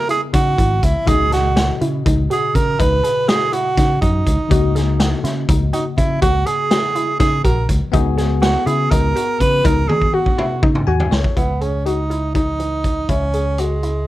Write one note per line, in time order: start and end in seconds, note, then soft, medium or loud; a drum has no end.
0.00 1.03 C#3 medium
0.00 1.03 B3 medium
0.00 1.04 E4 medium
0.00 1.04 D#5 medium
0.09 0.26 E4 medium
0.09 0.21 G#4 medium
0.09 closed hi-hat medium
0.33 0.54 C#3 medium
0.33 0.50 D#4 medium
0.33 0.85 F#4 medium
0.33 kick loud
0.33 closed hi-hat medium
0.58 0.79 G#1 loud
0.58 0.92 E4 medium
0.58 kick medium
0.58 closed hi-hat medium
0.83 0.93 C#2 medium
0.83 1.10 E4 medium
0.83 kick medium
0.83 closed hi-hat medium
1.05 1.69 C#2 medium
1.05 4.46 A#2 medium
1.05 4.46 C#3 medium
1.05 1.24 D#4 loud
1.05 4.47 F#4 medium
1.05 1.32 G#4 loud
1.05 4.47 D#5 medium
1.05 kick medium
1.05 closed hi-hat medium
1.32 1.78 F#4 medium
1.32 1.49 G#4 medium
1.32 snare soft
1.32 closed hi-hat medium
1.56 1.73 F#4 medium
1.56 snare loud
1.56 closed hi-hat medium
1.81 2.02 C#3 medium
1.81 1.98 E4 medium
1.81 closed hi-hat medium
2.06 2.26 C#2 medium
2.06 2.23 D#4 medium
2.06 kick loud
2.06 closed hi-hat medium
2.30 2.64 F#4 medium
2.30 2.57 G#4 medium
2.30 closed hi-hat medium
2.55 2.76 C#3 loud
2.55 2.81 A#4 loud
2.55 kick medium
2.55 closed hi-hat medium
2.79 3.00 C#2 medium
2.79 2.96 D#4 medium
2.79 3.30 B4 loud
2.79 kick medium
2.79 closed hi-hat medium
3.03 3.20 G#4 medium
3.03 closed hi-hat medium
3.28 3.45 F#4 medium
3.28 3.55 G#4 loud
3.28 snare loud
3.28 closed hi-hat medium
3.53 3.69 E4 medium
3.53 4.01 F#4 loud
3.53 closed hi-hat medium
3.77 3.98 C#3 medium
3.77 3.94 D#4 medium
3.77 kick loud
3.77 snare soft
3.77 closed hi-hat medium
4.01 4.23 F#2 medium
4.01 5.20 D#4 medium
4.01 4.35 F#4 medium
4.01 kick medium
4.01 closed hi-hat medium
4.26 4.37 C#2 medium
4.26 kick medium
4.26 closed hi-hat medium
4.49 5.13 C#2 medium
4.49 7.89 C#3 medium
4.49 7.89 A#3 medium
4.49 4.67 F#4 medium
4.49 7.90 F#4 medium
4.49 7.90 D#5 medium
4.49 kick loud
4.49 closed hi-hat medium
4.75 4.92 G#4 medium
4.75 snare soft
4.75 closed hi-hat medium
5.00 5.16 F#4 medium
5.00 snare medium
5.00 closed hi-hat medium
5.24 5.45 C#3 medium
5.24 5.41 E4 medium
5.24 snare soft
5.24 closed hi-hat medium
5.49 5.69 C#2 medium
5.49 5.66 D#4 medium
5.49 kick loud
5.49 closed hi-hat medium
5.73 5.84 D#4 medium
5.73 6.07 F#4 medium
5.73 closed hi-hat medium
5.97 6.18 C#3 medium
5.97 6.20 E4 medium
5.97 kick medium
5.97 closed hi-hat medium
6.22 6.43 C#2 medium
6.22 6.47 F#4 medium
6.22 6.39 F#4 medium
6.22 kick medium
6.22 closed hi-hat medium
6.46 7.19 G#4 loud
6.46 6.63 G#4 medium
6.46 closed hi-hat medium
6.71 6.88 F#4 medium
6.71 snare loud
6.71 closed hi-hat medium
6.95 7.12 E4 medium
6.95 closed hi-hat medium
7.19 7.41 C#3 medium
7.19 7.37 D#4 medium
7.19 7.42 G#4 medium
7.19 kick loud
7.19 snare soft
7.19 closed hi-hat medium
7.44 7.65 A#1 loud
7.44 7.78 F#4 medium
7.44 7.67 A#4 medium
7.44 kick medium
7.44 closed hi-hat medium
7.69 7.79 C#2 medium
7.69 kick medium
7.69 closed hi-hat medium
7.92 8.55 C#2 loud
7.92 11.32 B3 medium
7.92 8.10 D#4 medium
7.92 11.32 F#4 medium
7.92 11.33 G#4 medium
7.92 kick loud
7.92 closed hi-hat medium
8.17 8.34 G#4 medium
8.17 snare soft
8.17 closed hi-hat medium
8.41 8.68 F#4 medium
8.41 8.59 F#4 medium
8.41 snare loud
8.41 closed hi-hat medium
8.66 8.87 C#3 loud
8.66 8.83 E4 medium
8.66 8.92 G#4 medium
8.66 closed hi-hat medium
8.91 9.12 C#2 loud
8.91 9.08 D#4 medium
8.91 9.41 A#4 medium
8.91 kick loud
8.91 closed hi-hat medium
9.16 9.49 F#4 medium
9.16 closed hi-hat medium
9.40 9.61 C#3 loud
9.40 9.67 B4 loud
9.40 kick medium
9.40 closed hi-hat medium
9.64 9.85 C#2 medium
9.64 9.81 D#4 medium
9.64 9.90 A#4 loud
9.64 kick loud
9.64 closed hi-hat medium
9.88 10.15 G#4 medium
9.88 10.06 G#4 medium
9.88 high tom medium
10.02 kick medium
10.13 10.63 F#4 medium
10.13 10.31 F#4 medium
10.26 kick medium
10.38 10.55 E4 medium
10.38 mid tom medium
10.63 10.84 C#3 medium
10.63 10.80 D#4 medium
10.63 kick loud
10.75 mid tom medium
10.87 11.08 D#2 medium
10.87 11.21 F#4 medium
10.87 11.10 G#5 medium
11.00 floor tom medium
11.11 11.22 C#2 medium
11.11 11.35 C#5 medium
11.11 snare loud
11.24 kick medium
11.37 13.06 C#2 medium
11.37 11.63 B3 medium
11.37 11.53 E4 medium
11.37 kick medium
11.37 closed hi-hat medium
11.61 11.87 C#4 medium
11.61 11.78 G#4 medium
11.61 closed hi-hat soft
11.86 12.35 D#4 medium
11.86 12.03 F#4 medium
11.86 closed hi-hat medium
12.10 12.27 E4 medium
12.10 closed hi-hat soft
12.35 12.52 D#4 medium
12.35 13.11 D#4 medium
12.35 kick medium
12.35 closed hi-hat medium
12.60 12.93 E3 medium
12.60 closed hi-hat soft
12.84 kick medium
12.84 closed hi-hat soft
13.09 14.07 C#2 medium
13.09 13.61 C#4 medium
13.09 13.26 E4 medium
13.09 kick medium
13.09 closed hi-hat medium
13.33 13.51 G#4 medium
13.33 closed hi-hat soft
13.58 14.07 G#3 medium
13.58 13.75 F#4 medium
13.58 closed hi-hat medium
13.83 14.00 E4 medium
13.83 closed hi-hat soft